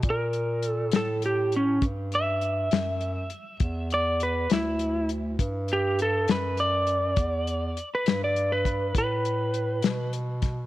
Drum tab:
HH |xxxxxxxxxxxx|xxxxxxxxxxxx|xxxxxxxxxxxx|
SD |---o-----o--|---o-----o--|---o-----o-o|
BD |o-----o-----|o-----o-----|o----oo----o|